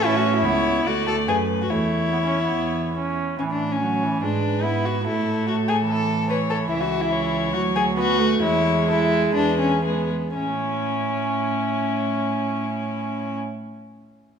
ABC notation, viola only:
X:1
M:4/4
L:1/16
Q:1/4=142
K:A
V:1 name="Viola"
C4 B,4 A,8 | A,4 B, C2 B,4- B, C4 | E,4 F,2 E,2 G,4 B,4 | A,8 E,8- |
E,8 F,4 B,2 A,2 | G,12 G,2 z2 | C16- | C16 |]